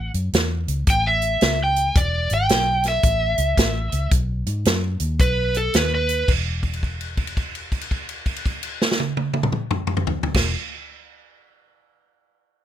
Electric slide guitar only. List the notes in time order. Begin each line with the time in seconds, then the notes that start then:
Already playing: F#5
0.90 G5
1.07 E5
1.63 G5
1.97 D5
2.34 G5
2.88 E5
5.21 B4
5.57 A4
5.76 B4
5.95 B4